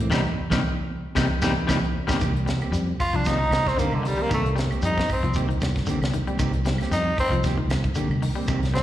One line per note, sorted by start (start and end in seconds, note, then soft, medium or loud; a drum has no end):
0.00 0.10 A#3 soft
0.00 0.11 C4 soft
0.00 closed hi-hat soft
0.09 0.22 C2 medium
0.09 0.20 C3 medium
0.09 0.20 D#3 medium
0.09 0.20 G3 medium
0.09 0.21 A#3 loud
0.09 0.21 C4 loud
0.09 0.21 D#4 medium
0.09 kick medium
0.09 low conga medium
0.09 claves loud
0.09 shekere medium
0.14 snare medium
0.50 0.61 C2 medium
0.50 0.60 C3 loud
0.50 0.59 D#3 loud
0.50 0.59 G3 medium
0.50 0.60 A#3 medium
0.50 0.60 C4 loud
0.50 0.60 D#4 medium
0.50 kick medium
0.50 snare medium
0.50 low conga medium
0.50 claves loud
0.50 shekere medium
1.15 1.27 C2 medium
1.15 1.25 C3 loud
1.15 1.25 D#3 medium
1.15 1.25 G3 medium
1.15 1.25 A#3 loud
1.15 1.26 C4 medium
1.15 1.25 D#4 loud
1.15 kick medium
1.15 snare medium
1.15 low conga medium
1.15 claves loud
1.15 shekere medium
1.41 1.53 C2 loud
1.41 1.51 C3 medium
1.41 1.51 D#3 medium
1.41 1.51 G3 loud
1.41 1.52 A#3 medium
1.41 1.51 C4 medium
1.41 1.51 D#4 loud
1.41 kick medium
1.41 snare medium
1.41 low conga loud
1.41 claves medium
1.41 shekere loud
1.67 1.79 C2 medium
1.67 1.77 C3 medium
1.67 1.77 D#3 medium
1.67 1.77 G3 medium
1.67 1.78 A#3 loud
1.67 1.78 C4 medium
1.67 1.78 D#4 medium
1.67 kick medium
1.67 snare medium
1.67 low conga loud
1.67 claves loud
1.67 shekere loud
2.07 2.18 C2 medium
2.07 2.16 C3 medium
2.07 2.16 D#3 medium
2.07 2.16 G3 medium
2.07 2.17 A#3 medium
2.07 2.17 C4 medium
2.07 2.17 D#4 medium
2.07 kick medium
2.07 snare medium
2.07 low conga loud
2.07 claves loud
2.07 shekere medium
2.20 2.61 C2 medium
2.20 2.41 D#3 medium
2.20 2.35 A#3 medium
2.20 2.34 G4 medium
2.20 muted clean electric guitar stroke medium
2.20 kick medium
2.20 closed hi-hat medium
2.20 claves medium
2.20 shekere medium
2.36 closed hi-hat soft
2.46 2.67 G3 medium
2.46 muted clean electric guitar stroke soft
2.46 snare medium
2.46 closed hi-hat medium
2.46 shekere soft
2.61 2.72 A#3 medium
2.61 2.72 C4 medium
2.61 2.72 G4 medium
2.61 closed hi-hat soft
2.61 claves medium
2.72 2.92 F2 medium
2.72 2.93 G3 medium
2.72 muted clean electric guitar stroke soft
2.72 closed hi-hat medium
2.72 shekere medium
3.00 3.17 F4 medium
3.00 kick medium
3.00 open hi-hat medium
3.00 claves medium
3.00 shekere soft
3.13 3.43 C2 medium
3.13 3.34 F3 medium
3.13 3.29 D4 medium
3.13 muted clean electric guitar stroke soft
3.13 closed hi-hat soft
3.25 3.40 D#3 medium
3.25 3.39 A#3 medium
3.25 3.40 C4 medium
3.25 3.69 D#4 loud
3.25 3.38 G4 medium
3.25 kick medium
3.25 snare soft
3.25 closed hi-hat medium
3.25 shekere medium
3.38 3.60 D#3 medium
3.38 muted clean electric guitar stroke soft
3.51 3.71 C2 medium
3.51 muted clean electric guitar stroke soft
3.51 snare medium
3.51 closed hi-hat soft
3.51 claves medium
3.51 shekere soft
3.66 3.81 C4 medium
3.66 kick medium
3.66 snare soft
3.66 closed hi-hat soft
3.77 3.98 D3 medium
3.77 3.92 D#3 medium
3.77 3.92 A#3 medium
3.77 3.96 A#3 medium
3.77 3.92 C4 medium
3.77 3.91 G4 medium
3.77 muted fingered electric bass stroke soft
3.77 closed hi-hat medium
3.77 shekere medium
3.92 4.12 C2 medium
3.92 4.09 D3 medium
3.92 muted clean electric guitar stroke soft
3.92 claves medium
4.03 4.15 D#3 medium
4.03 4.24 G3 medium
4.03 muted clean electric guitar stroke soft
4.03 open hi-hat medium
4.03 shekere soft
4.17 4.27 G3 medium
4.17 4.30 A#3 soft
4.17 4.31 C4 soft
4.17 4.31 G4 soft
4.22 4.32 A#3 medium
4.29 4.71 C2 medium
4.29 4.51 D#3 medium
4.29 4.45 D#3 medium
4.29 4.44 A#3 medium
4.29 4.44 C4 medium
4.29 4.44 G4 medium
4.29 kick medium
4.29 closed hi-hat medium
4.29 claves medium
4.29 shekere medium
4.34 4.49 A3 medium
4.45 muted clean electric guitar stroke soft
4.45 closed hi-hat soft
4.56 4.77 G3 medium
4.56 muted clean electric guitar stroke soft
4.56 snare medium
4.56 closed hi-hat soft
4.56 shekere soft
4.71 4.83 A#3 soft
4.71 4.82 C4 soft
4.71 4.83 G4 medium
4.71 closed hi-hat soft
4.71 claves medium
4.82 5.02 F2 medium
4.82 5.04 G3 medium
4.82 5.08 D#4 medium
4.82 closed hi-hat medium
4.82 shekere medium
4.98 kick medium
4.98 snare medium
4.98 closed hi-hat soft
5.08 kick medium
5.08 open hi-hat medium
5.08 claves medium
5.08 shekere soft
5.13 5.35 C4 medium
5.23 5.52 C2 medium
5.23 5.44 F3 medium
5.23 muted clean electric guitar stroke soft
5.23 closed hi-hat soft
5.34 5.49 D#3 medium
5.34 5.49 A#3 medium
5.34 5.48 C4 medium
5.34 5.48 G4 medium
5.34 kick medium
5.34 closed hi-hat medium
5.34 shekere medium
5.49 5.70 D#3 medium
5.49 muted clean electric guitar stroke soft
5.49 closed hi-hat soft
5.60 5.82 C2 medium
5.60 muted clean electric guitar stroke soft
5.60 kick medium
5.60 snare medium
5.60 closed hi-hat medium
5.60 claves medium
5.60 shekere soft
5.76 kick medium
5.76 snare soft
5.76 closed hi-hat soft
5.86 6.08 D3 medium
5.86 6.01 D#3 medium
5.86 6.01 A#3 medium
5.86 6.01 C4 medium
5.86 6.00 G4 medium
5.86 closed hi-hat medium
5.86 shekere medium
6.01 6.21 C2 medium
6.01 muted clean electric guitar stroke soft
6.01 snare medium
6.01 closed hi-hat soft
6.01 claves medium
6.13 6.25 D#3 medium
6.13 muted clean electric guitar stroke soft
6.13 closed hi-hat medium
6.13 shekere soft
6.27 6.37 G3 medium
6.27 6.39 A#3 soft
6.27 6.39 C4 soft
6.27 6.39 G4 soft
6.27 closed hi-hat soft
6.39 6.79 C2 medium
6.39 6.60 D#3 medium
6.39 6.53 D#3 medium
6.39 6.54 A#3 medium
6.39 6.53 C4 medium
6.39 6.53 G4 medium
6.39 kick medium
6.39 closed hi-hat medium
6.39 claves medium
6.39 shekere medium
6.53 muted clean electric guitar stroke soft
6.53 closed hi-hat soft
6.65 6.86 G3 medium
6.65 muted clean electric guitar stroke soft
6.65 snare medium
6.65 closed hi-hat medium
6.65 shekere soft
6.78 6.93 A#3 soft
6.78 6.93 C4 soft
6.78 6.92 G4 medium
6.78 snare soft
6.78 closed hi-hat soft
6.78 claves medium
6.91 7.11 F2 medium
6.91 7.12 G3 medium
6.91 7.17 D#4 medium
6.91 snare soft
6.91 closed hi-hat medium
6.91 shekere medium
7.17 7.35 C4 medium
7.17 kick medium
7.17 open hi-hat medium
7.17 claves medium
7.17 shekere soft
7.30 7.60 C2 medium
7.30 7.52 F3 medium
7.30 muted clean electric guitar stroke soft
7.30 closed hi-hat soft
7.43 7.59 D#3 medium
7.43 7.59 A#3 medium
7.43 7.59 C4 medium
7.43 7.59 G4 medium
7.43 kick medium
7.43 snare soft
7.43 closed hi-hat medium
7.43 shekere medium
7.58 7.78 D#3 medium
7.58 muted clean electric guitar stroke soft
7.67 7.88 C2 medium
7.67 muted clean electric guitar stroke soft
7.67 snare medium
7.67 closed hi-hat medium
7.67 claves medium
7.67 shekere soft
7.84 kick medium
7.84 closed hi-hat soft
7.94 8.17 D3 medium
7.94 8.10 D#3 medium
7.94 8.10 A#3 medium
7.94 8.10 G4 medium
7.94 muted fingered electric bass stroke soft
7.94 muted clean electric guitar stroke medium
7.94 closed hi-hat medium
7.94 shekere medium
8.08 8.29 C2 medium
8.08 muted clean electric guitar stroke soft
8.08 claves medium
8.22 8.34 D#3 medium
8.22 muted clean electric guitar stroke soft
8.22 open hi-hat medium
8.22 shekere soft
8.36 8.45 G3 medium
8.36 8.49 A#3 soft
8.36 8.49 C4 soft
8.48 8.83 C2 medium
8.48 8.69 D#3 medium
8.48 8.63 D#3 medium
8.48 8.63 A#3 medium
8.48 8.62 C4 medium
8.48 8.62 G4 medium
8.48 kick medium
8.48 closed hi-hat medium
8.48 claves medium
8.48 shekere medium
8.63 muted clean electric guitar stroke soft
8.63 snare soft
8.63 closed hi-hat soft
8.74 8.83 G3 medium
8.74 8.83 C4 medium
8.74 muted clean electric guitar stroke soft
8.74 snare medium
8.74 closed hi-hat soft
8.74 shekere soft